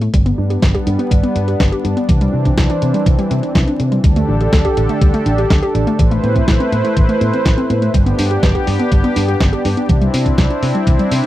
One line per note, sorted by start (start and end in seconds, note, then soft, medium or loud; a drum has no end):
0.01 0.12 A3 loud
0.01 closed hi-hat soft
0.14 0.31 G1 loud
0.14 0.18 G3 medium
0.14 2.07 G3 medium
0.14 2.07 B3 medium
0.14 4.00 D4 medium
0.14 kick loud
0.14 closed hi-hat medium
0.26 0.30 B3 loud
0.26 closed hi-hat soft
0.38 0.56 G2 medium
0.38 0.49 D4 medium
0.50 0.58 G4 medium
0.50 closed hi-hat soft
0.62 0.71 G1 medium
0.62 0.67 B4 medium
0.62 kick loud
0.62 snare loud
0.62 closed hi-hat medium
0.75 0.82 G4 loud
0.75 kick medium
0.75 closed hi-hat soft
0.87 0.96 G2 medium
0.87 0.98 D4 medium
0.87 closed hi-hat medium
0.99 1.10 B3 loud
0.99 closed hi-hat soft
1.11 1.20 G1 medium
1.11 1.16 G3 medium
1.11 kick loud
1.11 closed hi-hat medium
1.23 1.28 B3 loud
1.23 closed hi-hat soft
1.36 1.53 G2 medium
1.36 1.47 D4 medium
1.36 closed hi-hat medium
1.48 1.59 G4 medium
1.48 closed hi-hat soft
1.60 1.69 G1 medium
1.60 1.64 B4 medium
1.60 kick loud
1.60 snare loud
1.60 closed hi-hat loud
1.72 1.79 G4 loud
1.72 closed hi-hat soft
1.84 1.93 G2 medium
1.84 1.95 D4 medium
1.84 closed hi-hat medium
1.97 2.08 B3 loud
1.97 closed hi-hat soft
2.09 2.26 C2 loud
2.09 2.13 E3 medium
2.09 4.02 E3 medium
2.09 4.02 C4 medium
2.09 kick loud
2.09 closed hi-hat medium
2.21 2.25 G3 loud
2.21 closed hi-hat soft
2.33 2.51 C3 medium
2.33 2.44 C4 medium
2.45 2.53 D4 medium
2.45 kick medium
2.45 closed hi-hat soft
2.58 2.66 C2 medium
2.58 2.62 E4 medium
2.58 kick loud
2.58 snare loud
2.58 closed hi-hat medium
2.70 2.77 D4 loud
2.70 closed hi-hat soft
2.82 2.91 C3 medium
2.82 2.93 C4 medium
2.82 closed hi-hat medium
2.94 3.05 G3 loud
2.94 closed hi-hat soft
3.06 3.15 C2 loud
3.06 3.11 E3 medium
3.06 kick loud
3.06 closed hi-hat medium
3.19 3.23 G3 loud
3.19 closed hi-hat soft
3.31 3.40 C3 medium
3.31 3.42 C4 medium
3.31 closed hi-hat medium
3.43 3.54 D4 medium
3.43 closed hi-hat soft
3.55 3.64 C2 medium
3.55 3.60 E4 medium
3.55 kick loud
3.55 snare loud
3.55 closed hi-hat loud
3.67 3.75 D4 loud
3.67 closed hi-hat soft
3.80 3.97 C3 medium
3.80 3.91 C4 medium
3.80 closed hi-hat medium
3.92 4.03 G3 loud
3.92 closed hi-hat soft
4.04 4.21 D2 loud
4.04 5.97 D3 medium
4.04 4.08 G3 medium
4.04 5.97 D4 medium
4.04 5.97 G4 medium
4.04 5.97 A4 medium
4.04 kick loud
4.04 closed hi-hat medium
4.16 4.21 A3 loud
4.16 closed hi-hat soft
4.28 4.46 A1 medium
4.28 4.39 D4 medium
4.41 4.48 G4 medium
4.41 closed hi-hat soft
4.53 4.62 D2 medium
4.53 4.57 A4 medium
4.53 kick loud
4.53 snare loud
4.53 closed hi-hat loud
4.65 4.72 G4 loud
4.65 kick medium
4.65 closed hi-hat soft
4.77 4.86 A1 medium
4.77 4.88 D4 medium
4.77 closed hi-hat medium
4.89 5.00 A3 loud
4.89 closed hi-hat soft
5.01 5.10 D2 medium
5.01 5.06 G3 medium
5.01 kick loud
5.01 closed hi-hat medium
5.14 5.18 A3 loud
5.14 closed hi-hat soft
5.26 5.44 A1 medium
5.26 5.37 D4 medium
5.26 closed hi-hat medium
5.38 5.49 G4 medium
5.38 closed hi-hat soft
5.50 5.59 D2 loud
5.50 5.55 A4 medium
5.50 kick loud
5.50 snare loud
5.50 closed hi-hat medium
5.62 5.70 G4 loud
5.62 closed hi-hat soft
5.75 5.84 A1 medium
5.75 5.86 D4 medium
5.75 closed hi-hat medium
5.87 5.98 A3 loud
5.87 closed hi-hat soft
5.99 6.17 A1 loud
5.99 6.03 E3 medium
5.99 7.92 A3 medium
5.99 7.92 E4 medium
5.99 7.92 B4 medium
5.99 7.92 C5 medium
5.99 kick loud
5.99 closed hi-hat medium
6.11 6.16 A3 loud
6.11 closed hi-hat soft
6.23 6.41 A2 medium
6.23 6.34 B3 medium
6.23 closed hi-hat soft
6.36 6.43 C4 medium
6.36 kick medium
6.36 closed hi-hat soft
6.48 6.57 A1 medium
6.48 6.52 E4 medium
6.48 kick loud
6.48 snare loud
6.48 closed hi-hat medium
6.60 6.67 C4 loud
6.60 closed hi-hat soft
6.72 6.81 A2 medium
6.72 6.83 B3 medium
6.72 closed hi-hat medium
6.84 6.95 A3 loud
6.84 closed hi-hat soft
6.97 7.05 A1 loud
6.97 7.01 E3 medium
6.97 kick loud
6.97 closed hi-hat medium
7.09 7.13 A3 loud
7.09 closed hi-hat soft
7.21 7.30 A2 medium
7.21 7.32 B3 medium
7.21 closed hi-hat medium
7.33 7.44 C4 medium
7.33 closed hi-hat soft
7.45 7.54 A1 medium
7.45 7.50 E4 medium
7.45 kick loud
7.45 snare loud
7.45 closed hi-hat medium
7.57 7.65 C4 loud
7.57 closed hi-hat soft
7.70 7.87 A2 medium
7.70 7.81 B3 medium
7.70 closed hi-hat medium
7.82 7.93 A3 loud
7.82 closed hi-hat soft
7.94 8.12 G1 loud
7.94 7.98 G3 medium
7.94 9.88 B3 medium
7.94 11.26 D4 medium
7.94 9.88 G4 medium
7.94 kick loud
7.94 closed hi-hat medium
8.06 8.11 B3 loud
8.06 closed hi-hat soft
8.18 8.36 G2 medium
8.18 8.29 D4 medium
8.18 open hi-hat loud
8.31 8.38 G4 medium
8.31 closed hi-hat soft
8.43 8.52 G1 medium
8.43 8.47 B4 medium
8.43 kick loud
8.43 snare loud
8.43 closed hi-hat medium
8.55 8.62 G4 loud
8.55 kick medium
8.55 closed hi-hat soft
8.67 8.76 G2 medium
8.67 8.78 D4 medium
8.67 open hi-hat medium
8.79 8.90 B3 loud
8.79 closed hi-hat soft
8.92 9.01 G1 medium
8.92 8.96 G3 medium
8.92 kick loud
8.92 closed hi-hat medium
9.04 9.08 B3 loud
9.04 closed hi-hat soft
9.16 9.34 G2 medium
9.16 9.27 D4 medium
9.16 open hi-hat loud
9.28 9.39 G4 medium
9.28 closed hi-hat soft
9.40 9.49 G1 loud
9.40 9.45 B4 medium
9.40 kick loud
9.40 snare loud
9.40 closed hi-hat medium
9.53 9.60 G4 loud
9.53 closed hi-hat soft
9.65 9.74 G2 medium
9.65 9.76 D4 medium
9.65 open hi-hat medium
9.77 9.88 B3 loud
9.77 closed hi-hat soft
9.89 10.07 C2 loud
9.89 9.94 E3 medium
9.89 11.26 C4 medium
9.89 11.26 E4 medium
9.89 kick loud
9.89 closed hi-hat medium
10.02 10.06 G3 loud
10.02 closed hi-hat soft
10.14 10.31 C3 medium
10.14 10.25 C4 medium
10.14 open hi-hat loud
10.26 10.33 D4 medium
10.26 kick medium
10.26 closed hi-hat soft
10.38 10.47 C2 medium
10.38 10.42 E4 medium
10.38 kick loud
10.38 snare loud
10.38 closed hi-hat medium
10.50 10.58 D4 loud
10.50 closed hi-hat soft
10.63 10.71 C3 medium
10.63 10.74 C4 medium
10.63 open hi-hat medium
10.75 10.86 G3 loud
10.75 closed hi-hat soft
10.87 10.96 C2 loud
10.87 10.91 E3 medium
10.87 kick loud
10.87 closed hi-hat medium
10.99 11.03 G3 loud
10.99 closed hi-hat soft
11.11 11.20 C3 medium
11.11 11.22 C4 medium
11.11 open hi-hat loud